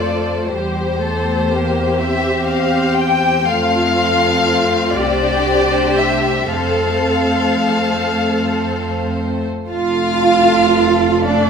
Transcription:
Already playing: double bass section F2, viola section A3, cello section F4, violin section A4 C5 D5
0.48 double bass section E2, viola section G3, cello section G4, violin section G4 C5
0.99 viola section A3, cello section A4
1.50 viola section A#3, cello section G4
1.99 viola section C4, violin section E5
2.49 violin section F5
2.98 violin section G5
3.46 double bass section F2, viola section A3 C4, cello section F4, violin section F4 A4 F5
4.94 double bass section C2, viola section D4, cello section G4, violin section G4 C5 D5
5.98 violin section E5
6.48 double bass section F2, viola section A3 C4, cello section A4, violin section A4 C5 F5
9.70 double bass section F1, cello section F4, violin section A4 F5
11.25 viola section A3, cello section D4, violin section D5

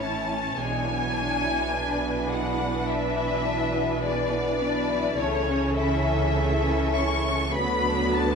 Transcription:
Already playing: double bass section A1, cello section A2, viola section E3 C#4, violin section C#5
0.02 violin section E4 A5
0.31 violin section C#4
0.58 double bass section B1, cello section B2, viola section E3 D4, violin section G#3 G#5
0.87 violin section B3
1.14 violin section D4
1.44 violin section E4
1.70 violin section D4 B4
2.00 violin section B3
2.28 violin section G#3 F#5
2.59 violin section B3
2.88 violin section D4 E5
3.16 violin section E4
3.46 violin section D4
3.74 violin section B3
4.04 violin section G#3 D5
4.34 violin section B3
4.61 violin section D4
4.92 violin section E4
5.19 double bass section C#2, cello section C#3, viola section E3 C#4, violin section A3 A4 C#5
5.49 violin section C#4
5.77 violin section E4 E5
6.07 violin section C#4
6.37 violin section A3
6.67 violin section C#4
6.94 violin section E4 C#6
7.28 violin section C#4
7.55 double bass section D2, cello section D3, viola section F#3 B3, violin section B3 B4 B5
7.87 violin section D4
8.16 violin section B3 A5

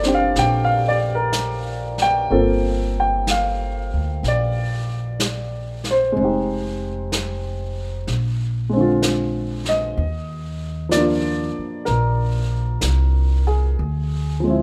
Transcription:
Already playing: upright bass G1, grand piano A#3 C4 F4 A4 A#4 D5
0.03 grand piano C4 D4, snare
0.08 grand piano G4
0.14 grand piano F5
0.35 upright bass A#1, grand piano G5, brush sweep, snare
0.65 grand piano F5
0.88 grand piano D5
1.15 grand piano A#4
1.33 brush sweep, snare, hi-hat pedal
1.98 snare
2.02 grand piano G5
2.30 upright bass G1, grand piano A#3 C4 F4 A4, brush sweep
3.00 grand piano G5
3.27 grand piano F5, brush sweep, snare, hi-hat pedal
3.94 upright bass D2
4.23 upright bass A#1, brush sweep, snare
4.28 grand piano D5
5.20 brush sweep, snare, hi-hat pedal
5.84 snare
5.91 grand piano C5
6.12 grand piano G#3 C4, brush sweep
6.17 upright bass F1, grand piano D#4
6.24 grand piano G4
7.12 brush sweep, snare, hi-hat pedal
8.07 upright bass A#1, brush sweep, snare
8.69 grand piano G#3 C4
8.77 grand piano D3 F4
9.02 brush sweep, snare, hi-hat pedal
9.65 grand piano D#5, snare
9.96 upright bass D#2, brush sweep
10.89 grand piano F3 A#3 D5, brush sweep, snare, hi-hat pedal
10.97 grand piano D4 F4
11.59 muted upright bass stroke
11.85 upright bass A#1, grand piano A#4, brush sweep, snare
12.81 upright bass C2, brush sweep, snare, hi-hat pedal
13.47 grand piano G#4
13.77 upright bass D2, brush sweep
14.40 grand piano F3 G#3
14.47 grand piano C4 E4

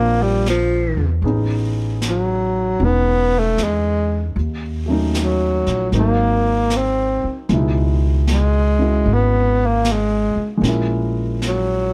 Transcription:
Already playing: upright bass A#1, tenor saxophone A#3, grand piano A#3 C4 D4 F4
0.22 tenor saxophone G3
0.46 tenor saxophone F3, snare, hi-hat pedal
0.97 upright bass E2
1.22 upright bass A1, grand piano B3 D#4 G#4, brush sweep
1.26 grand piano C#4
2.02 snare, hi-hat pedal
2.09 tenor saxophone F#3
2.80 upright bass E1, grand piano C#4 D#4, brush sweep
2.84 tenor saxophone B3
3.39 tenor saxophone A3
3.58 upright bass E2, snare, hi-hat pedal
3.64 tenor saxophone G#3
4.36 upright bass D#2, brush sweep
4.86 grand piano F#3 A3 C#4
4.91 grand piano D#4
5.14 snare, hi-hat pedal
5.22 tenor saxophone F#3
5.66 upright bass A#1, snare
5.92 upright bass G#1, grand piano F#3 A#3 C4 D#4, brush sweep, snare
5.99 tenor saxophone A#3
6.70 snare, hi-hat pedal
6.76 tenor saxophone C4
7.24 muted upright bass stroke
7.49 upright bass C#2, grand piano B2 G#3 D#4, brush sweep, snare
7.54 grand piano E4
8.27 snare, hi-hat pedal
8.32 tenor saxophone G#3
8.79 grand piano C#4 E4 F#4
9.06 upright bass G#1, brush sweep
9.14 tenor saxophone B3
9.66 tenor saxophone A#3
9.85 snare, hi-hat pedal
9.92 tenor saxophone G#3
10.36 muted upright bass stroke
10.57 grand piano G#3 A#3
10.62 upright bass A#1, grand piano C#4, brush sweep, snare
10.68 grand piano E4
11.42 snare, hi-hat pedal
11.47 tenor saxophone F#3

